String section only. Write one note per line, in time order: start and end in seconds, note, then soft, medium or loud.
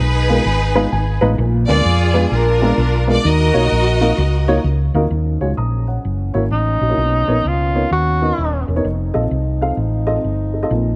0.00 1.17 D#4 medium
0.00 1.18 G#4 medium
0.00 1.21 B4 loud
1.68 2.30 F4 medium
1.68 2.58 G#4 medium
1.68 2.11 D5 loud
2.31 3.20 D4 medium
2.31 3.20 F4 medium
2.31 3.04 A#4 loud
3.10 3.25 D5 loud
3.24 4.59 F#4 medium
3.24 4.60 A#4 medium
3.24 4.64 D#5 loud